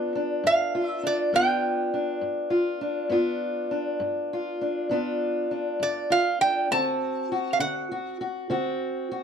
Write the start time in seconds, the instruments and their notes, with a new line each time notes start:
Already playing: steel-string acoustic guitar B3 D4 F4, resonator guitar played with a steel bar D5
0.15 steel-string acoustic guitar D4
0.44 steel-string acoustic guitar G2, resonator guitar played with a steel bar F5
0.75 steel-string acoustic guitar F4
0.86 resonator guitar played with a steel bar E5
1.03 steel-string acoustic guitar D4, resonator guitar played with a steel bar D5
1.33 steel-string acoustic guitar G2 B3 D4 F4, resonator guitar played with a steel bar G5
1.94 steel-string acoustic guitar D4
2.21 steel-string acoustic guitar G2
2.50 steel-string acoustic guitar F4
2.81 steel-string acoustic guitar D4
3.09 steel-string acoustic guitar G2 B3 D4 F4
3.71 steel-string acoustic guitar D4
4.00 steel-string acoustic guitar G2
4.33 steel-string acoustic guitar F4
4.61 steel-string acoustic guitar D4
4.89 steel-string acoustic guitar G2 B3 D4 F4
5.51 steel-string acoustic guitar D4
5.80 steel-string acoustic guitar G2, resonator guitar played with a steel bar D5
6.10 steel-string acoustic guitar F4, resonator guitar played with a steel bar F5
6.41 steel-string acoustic guitar D4, resonator guitar played with a steel bar G5
6.71 steel-string acoustic guitar D3 C4 F#4, resonator guitar played with a steel bar A5
7.32 steel-string acoustic guitar F#4
7.53 resonator guitar played with a steel bar F5
7.60 steel-string acoustic guitar D3, resonator guitar played with a steel bar F#5
7.92 steel-string acoustic guitar F#4
8.21 steel-string acoustic guitar F#4
8.50 steel-string acoustic guitar D3 C4 F#4
9.11 steel-string acoustic guitar F#4